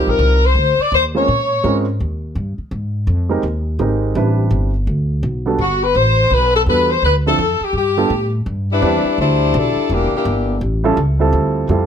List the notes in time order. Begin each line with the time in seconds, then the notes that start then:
Already playing: G3 C4 D#4 F4 A#4
0.07 A#1 A#4
0.19 C2
0.46 C5
0.55 D2
0.79 D5, muted upright bass stroke
0.92 D#2 C5
1.15 G#3 C4 C#4 F4 A#4 C#5
1.28 A#2
1.64 G#2 G#3 C4 C#4 F4 A#4
2.00 D#2
2.35 G2
2.58 muted upright bass stroke
2.71 G#2
3.07 F2
3.29 G#3 C4 D#4 G4 A#4
3.43 D#2
3.79 G#1 G#3 C4 D#4 G4 A#4
4.15 A1 G3 C4 D4 E4 B4
4.51 G1
4.87 D2
5.23 B1
5.46 G3 B3 D4 F#4 A4
5.58 G1 F#4
5.84 B4
5.95 A1 C5
6.30 B1 B4
6.56 A4
6.66 E2 G3 B3 D4 F#4 A4 B4
6.91 C5
7.02 D2 B4
7.26 F3 C4 D4 E4 A4
7.38 F2
7.61 G4, muted upright bass stroke
7.73 G2
7.77 G4
7.97 G3 B3 D4 F4 A4
8.10 A2
8.46 G2
8.72 G3 D4 E4 B4
8.81 E2 G3 C4 D4 E4 B4
9.05 muted upright bass stroke
9.18 D2 G3 D4 E4 C5
9.54 B1 G3 D4 E4 A4
9.76 muted upright bass stroke
9.89 E1 E3 A#3 D4 G4
10.12 A#3, muted upright bass stroke
10.16 E3 D4 G4
10.25 G1
10.61 A1
10.84 G3 C#4 E4 F4 A4
10.97 C#2
11.19 G3 C4 E4 F4 A4
11.33 D2
11.69 F2 G3 C4 E4 F4 A4